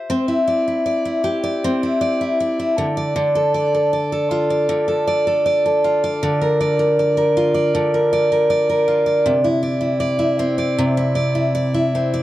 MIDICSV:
0, 0, Header, 1, 2, 480
1, 0, Start_track
1, 0, Tempo, 763359
1, 62, Time_signature, 4, 2, 24, 8
1, 7688, End_track
2, 0, Start_track
2, 0, Title_t, "Steel-string acoustic guitar"
2, 0, Program_c, 0, 25
2, 0, Note_on_c, 0, 67, 49
2, 0, Note_on_c, 0, 72, 48
2, 0, Note_on_c, 0, 76, 58
2, 61, Note_on_c, 0, 60, 76
2, 174, Note_off_c, 0, 72, 0
2, 177, Note_on_c, 0, 64, 53
2, 296, Note_off_c, 0, 76, 0
2, 299, Note_on_c, 0, 74, 61
2, 417, Note_off_c, 0, 64, 0
2, 425, Note_on_c, 0, 64, 47
2, 537, Note_off_c, 0, 74, 0
2, 539, Note_on_c, 0, 74, 55
2, 569, Note_off_c, 0, 67, 0
2, 655, Note_off_c, 0, 64, 0
2, 663, Note_on_c, 0, 64, 56
2, 779, Note_on_c, 0, 67, 57
2, 900, Note_off_c, 0, 74, 0
2, 902, Note_on_c, 0, 74, 62
2, 1024, Note_off_c, 0, 60, 0
2, 1033, Note_on_c, 0, 60, 78
2, 1144, Note_off_c, 0, 64, 0
2, 1151, Note_on_c, 0, 64, 54
2, 1261, Note_off_c, 0, 74, 0
2, 1263, Note_on_c, 0, 74, 65
2, 1381, Note_off_c, 0, 64, 0
2, 1389, Note_on_c, 0, 64, 54
2, 1509, Note_off_c, 0, 74, 0
2, 1511, Note_on_c, 0, 74, 61
2, 1624, Note_off_c, 0, 64, 0
2, 1631, Note_on_c, 0, 64, 55
2, 1748, Note_on_c, 0, 50, 72
2, 1791, Note_off_c, 0, 67, 0
2, 1797, Note_off_c, 0, 64, 0
2, 1798, Note_off_c, 0, 60, 0
2, 1865, Note_off_c, 0, 74, 0
2, 1868, Note_on_c, 0, 74, 65
2, 1983, Note_off_c, 0, 50, 0
2, 1985, Note_on_c, 0, 50, 79
2, 2108, Note_on_c, 0, 69, 57
2, 2225, Note_off_c, 0, 74, 0
2, 2228, Note_on_c, 0, 74, 61
2, 2347, Note_off_c, 0, 69, 0
2, 2355, Note_on_c, 0, 69, 54
2, 2468, Note_off_c, 0, 74, 0
2, 2471, Note_on_c, 0, 74, 57
2, 2585, Note_off_c, 0, 69, 0
2, 2592, Note_on_c, 0, 69, 59
2, 2709, Note_on_c, 0, 65, 60
2, 2829, Note_off_c, 0, 74, 0
2, 2831, Note_on_c, 0, 74, 59
2, 2946, Note_off_c, 0, 50, 0
2, 2948, Note_on_c, 0, 50, 73
2, 3060, Note_off_c, 0, 69, 0
2, 3067, Note_on_c, 0, 69, 52
2, 3189, Note_off_c, 0, 74, 0
2, 3191, Note_on_c, 0, 74, 66
2, 3306, Note_off_c, 0, 69, 0
2, 3313, Note_on_c, 0, 69, 57
2, 3429, Note_off_c, 0, 74, 0
2, 3431, Note_on_c, 0, 74, 65
2, 3550, Note_off_c, 0, 69, 0
2, 3557, Note_on_c, 0, 69, 59
2, 3672, Note_off_c, 0, 65, 0
2, 3674, Note_on_c, 0, 65, 60
2, 3794, Note_off_c, 0, 74, 0
2, 3797, Note_on_c, 0, 74, 64
2, 3913, Note_off_c, 0, 50, 0
2, 3916, Note_on_c, 0, 50, 82
2, 3960, Note_off_c, 0, 69, 0
2, 4033, Note_on_c, 0, 70, 57
2, 4151, Note_off_c, 0, 74, 0
2, 4153, Note_on_c, 0, 74, 62
2, 4263, Note_off_c, 0, 70, 0
2, 4270, Note_on_c, 0, 70, 56
2, 4394, Note_off_c, 0, 74, 0
2, 4396, Note_on_c, 0, 74, 61
2, 4502, Note_off_c, 0, 70, 0
2, 4509, Note_on_c, 0, 70, 59
2, 4631, Note_off_c, 0, 65, 0
2, 4633, Note_on_c, 0, 65, 62
2, 4741, Note_off_c, 0, 74, 0
2, 4744, Note_on_c, 0, 74, 64
2, 4868, Note_off_c, 0, 50, 0
2, 4871, Note_on_c, 0, 50, 79
2, 4985, Note_off_c, 0, 70, 0
2, 4993, Note_on_c, 0, 70, 56
2, 5108, Note_off_c, 0, 74, 0
2, 5110, Note_on_c, 0, 74, 70
2, 5223, Note_off_c, 0, 70, 0
2, 5230, Note_on_c, 0, 70, 59
2, 5342, Note_off_c, 0, 74, 0
2, 5344, Note_on_c, 0, 74, 67
2, 5460, Note_off_c, 0, 70, 0
2, 5467, Note_on_c, 0, 70, 59
2, 5575, Note_off_c, 0, 65, 0
2, 5582, Note_on_c, 0, 65, 59
2, 5695, Note_off_c, 0, 74, 0
2, 5698, Note_on_c, 0, 74, 62
2, 5820, Note_on_c, 0, 48, 84
2, 5872, Note_off_c, 0, 65, 0
2, 5875, Note_off_c, 0, 70, 0
2, 5938, Note_on_c, 0, 64, 63
2, 5957, Note_off_c, 0, 50, 0
2, 5957, Note_off_c, 0, 74, 0
2, 6054, Note_on_c, 0, 74, 63
2, 6159, Note_off_c, 0, 64, 0
2, 6166, Note_on_c, 0, 64, 55
2, 6285, Note_off_c, 0, 74, 0
2, 6288, Note_on_c, 0, 74, 66
2, 6399, Note_off_c, 0, 64, 0
2, 6407, Note_on_c, 0, 64, 60
2, 6534, Note_on_c, 0, 60, 65
2, 6650, Note_off_c, 0, 74, 0
2, 6652, Note_on_c, 0, 74, 60
2, 6774, Note_off_c, 0, 48, 0
2, 6782, Note_on_c, 0, 48, 82
2, 6892, Note_off_c, 0, 64, 0
2, 6899, Note_on_c, 0, 64, 60
2, 7010, Note_off_c, 0, 74, 0
2, 7012, Note_on_c, 0, 74, 70
2, 7129, Note_off_c, 0, 64, 0
2, 7137, Note_on_c, 0, 64, 58
2, 7258, Note_off_c, 0, 74, 0
2, 7261, Note_on_c, 0, 74, 69
2, 7377, Note_off_c, 0, 64, 0
2, 7384, Note_on_c, 0, 64, 60
2, 7511, Note_off_c, 0, 60, 0
2, 7514, Note_on_c, 0, 60, 59
2, 7629, Note_off_c, 0, 74, 0
2, 7631, Note_on_c, 0, 74, 65
2, 7688, Note_off_c, 0, 48, 0
2, 7688, Note_off_c, 0, 60, 0
2, 7688, Note_off_c, 0, 64, 0
2, 7688, Note_off_c, 0, 74, 0
2, 7688, End_track
0, 0, End_of_file